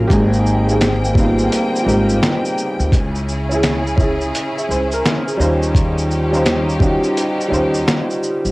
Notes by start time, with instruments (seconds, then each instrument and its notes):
Already playing: upright piano F#3 A#3 C#4 F4 G#4 A#4
0.08 upright bass G#1, upright piano A#3 C4 G4, string section A#3 C4 G5, kick, closed hi-hat, shaker
0.12 upright piano D#4 G#4
0.33 shaker
0.46 shaker
0.67 upright piano A#3 C4 G4, shaker
0.71 upright piano D#4 G#4
0.81 finger snap, snare, closed hi-hat, shaker
1.04 shaker
1.14 upright piano G3 A#3 B3, kick, shaker
1.18 upright piano D#4 F4
1.23 upright piano C4
1.38 shaker
1.52 closed hi-hat, shaker
1.76 shaker
1.83 upright bass G#1, upright piano G3 A#3 C4 D#4
1.88 upright piano G4, shaker
2.09 shaker
2.23 finger snap, snare, closed hi-hat, shaker
2.45 shaker
2.58 shaker
2.80 upright bass D2, shaker
2.92 upright bass C#2, string section C#3 C#4 E4 G#4, kick, closed hi-hat, shaker
3.15 shaker
3.28 shaker
3.49 upright piano C#4 E4, shaker
3.54 upright piano G#4
3.63 finger snap, snare, closed hi-hat, shaker
3.87 shaker
3.96 upright piano C#4 E4, kick, shaker
4.02 upright piano G#4
4.21 shaker
4.35 closed hi-hat, shaker
4.57 upright piano E5, shaker
4.69 upright bass C#2, upright piano C5, shaker
4.92 upright piano A#4, shaker
5.06 finger snap, snare, closed hi-hat, shaker
5.27 upright piano G#4, shaker
5.37 upright bass D#2, upright piano G3 C#4 D#4 F4, string section D#4 G4, shaker
5.42 upright piano C5
5.63 shaker
5.75 kick, closed hi-hat, shaker
5.98 shaker
6.11 shaker
6.31 upright piano G3 C#4 D#4 F4, shaker
6.36 upright piano C5
6.46 finger snap, snare, closed hi-hat, shaker
6.69 shaker
6.79 upright piano G3 C#4 D#4, kick, shaker
6.83 upright piano F4 F#4
6.91 upright piano G4
7.03 shaker
7.17 closed hi-hat, shaker
7.41 shaker
7.48 upright bass D#2, upright piano G3 C#4 D#4
7.52 upright piano F4 C5, shaker
7.74 shaker
7.88 finger snap, snare, closed hi-hat, shaker
8.10 shaker
8.23 shaker
8.45 upright bass G1, shaker